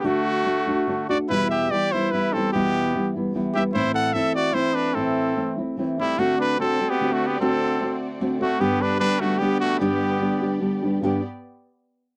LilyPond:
<<
  \new Staff \with { instrumentName = "Trumpet" } { \time 3/4 \key g \major \tempo 4 = 148 fis'2~ fis'8 d''8 | b'8 e''8 d''8 c''8 b'8 a'8 | g'4. r4 e''8 | c''8 fis''8 e''8 d''8 c''8 b'8 |
a'4. r4 e'8 | fis'8 b'8 a'8. g'16~ \tuplet 3/2 { g'8 fis'8 g'8 } | a'4. r4 fis'8 | g'8 b'8 b'8 fis'8 g'8 fis'8 |
g'2 r4 | r2. | }
  \new Staff \with { instrumentName = "Violin section" } { \time 3/4 \key g \major r2. | r2. | r2. | r2. |
r2. | <c' fis' d''>2.~ | <c' fis' d''>2. | <b g' d''>2.~ |
<b g' d''>2. | <b g' d''>8 r2 r8 | }
  \new Staff \with { instrumentName = "Trumpet" } { \time 3/4 \key g \major a2~ a8 fis'8 | e'8 g'8 g'8 e'8 e'8 c'8 | b4. r4 g'8 | e'8 a'8 a'8 fis'8 e'8 d'8 |
c'4. r4 g8 | a8 d'8 c'8. b16~ \tuplet 3/2 { b8 a8 b8 } | c'4. r4 a8 | b8 d'8 d'8 a8 b8 a8 |
b2 r4 | r2. | }
  \new Staff \with { instrumentName = "Nylon-string guitar" } { \time 3/4 \key g \major <d a d' fis'>4 <d a d' fis'>8 <a d' fis'>8 <d a d' fis'>8 <a d' fis'>8 | <e, b, e g b e'>4 <e g b e'>8 <e g b e'>8 <e g b e'>8 <e g b e'>8 | <e, b, e g b e'>4 <e g b e'>8 <e g b e'>8 <e g b e'>8 <e g b e'>8 | <a, e a c' e'>4 <e a c' e'>4 <e a c' e'>4 |
<a, e a c' e'>4 <e a c' e'>8 <a c' e'>8 <e a c' e'>8 <a c' e'>8 | <d a c' fis'>4 <d a c' fis'>8 <a fis'>8 <d a c' fis'>4 | <d a c' fis'>4 <d a c' fis'>4 <d a c' fis'>8 <a c' fis'>8 | <g, d g b d' g'>4 <g b d' g'>8 <g b d' g'>8 <g b d' g'>4 |
<g, d g b d' g'>4 <g b d' g'>8 <g b d' g'>8 <g b d' g'>8 <g b d' g'>8 | <g, d g b d' g'>8 r2 r8 | }
>>